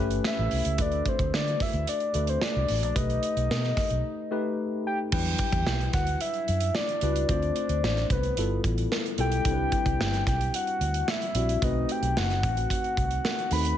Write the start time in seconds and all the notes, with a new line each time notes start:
Already playing: G1 A3 C#4 G4 B4
0.10 closed hi-hat
0.24 E5, snare
0.39 A1
0.51 C2, open hi-hat
0.65 C#2, closed hi-hat
0.78 D2 A3 D4 F#4 B4 D5, kick, closed hi-hat
0.92 closed hi-hat
1.05 C5, kick, closed hi-hat
1.19 D2, kick, closed hi-hat
1.33 D3 D5, snare
1.48 closed hi-hat
1.60 E5, kick, snare, open hi-hat
1.73 D2, closed hi-hat
1.87 D5, closed hi-hat
2.00 closed hi-hat
2.14 D2 A3 D4 F#4 B4, closed hi-hat
2.27 C5, closed hi-hat
2.42 D5, snare
2.56 C2
2.68 A1, open hi-hat
2.83 A#1 D5, closed hi-hat
2.95 B1 A3 D#4 G4 B4 D#5, kick, closed hi-hat
3.10 closed hi-hat
3.23 closed hi-hat
3.36 B1, closed hi-hat
3.50 B2, snare
3.64 snare
3.77 kick, snare, open hi-hat
3.90 B1, closed hi-hat
4.31 A3 D#4 G4 B4
4.87 G5
5.12 E2 F#3 D4 E4 B4 G5, kick, crash
5.19 G3
5.26 closed hi-hat
5.39 kick, closed hi-hat
5.52 E2, kick, closed hi-hat
5.66 B1, snare
5.80 closed hi-hat
5.93 D2 F#5, kick, snare, closed hi-hat
6.07 closed hi-hat
6.21 E5, closed hi-hat
6.34 closed hi-hat
6.48 F#2, closed hi-hat
6.60 closed hi-hat
6.75 D5, snare
6.89 closed hi-hat
7.01 C#2 G3 D4 E4 F#4 B4, closed hi-hat
7.16 closed hi-hat
7.29 D2 A3 C4 D4 F4 C5 D5, kick, closed hi-hat
7.42 closed hi-hat
7.56 closed hi-hat
7.69 D2, closed hi-hat
7.83 A1, snare
7.97 snare, closed hi-hat
8.10 C2 B4, kick, closed hi-hat
8.23 closed hi-hat
8.37 G1 G3 B3 E4 F4 A4, closed hi-hat
8.64 A1, kick, closed hi-hat
8.78 closed hi-hat
8.92 snare
9.06 closed hi-hat
9.18 B1 G3 B3 E4 F4 A4 G5, closed hi-hat
9.32 closed hi-hat
9.45 C2 G3 C4 D4 E4 A4, kick, closed hi-hat
9.53 B4
9.72 kick, closed hi-hat
9.86 C2, kick, closed hi-hat
10.00 G1, snare
10.14 snare, closed hi-hat
10.27 B1 G5, kick, snare, closed hi-hat
10.41 closed hi-hat
10.54 F#5, closed hi-hat
10.67 closed hi-hat
10.81 D2, closed hi-hat
10.94 closed hi-hat
11.08 E5, snare
11.22 closed hi-hat
11.34 A#1 G3 C4 D4 E4 F#4, closed hi-hat
11.49 closed hi-hat
11.62 B1 A3 C4 D#4 F#4 B4 D#5, kick, closed hi-hat
11.89 G5, closed hi-hat
12.02 B1, closed hi-hat
12.17 F#1 F#5, snare
12.30 snare, closed hi-hat
12.43 A1, kick, closed hi-hat
12.57 closed hi-hat
12.70 kick, closed hi-hat
12.84 closed hi-hat
12.97 C2, kick, closed hi-hat
13.11 closed hi-hat
13.25 snare
13.38 closed hi-hat
13.51 D#2 A3 C4 D#4 F#4 B4 B5, open hi-hat
13.65 closed hi-hat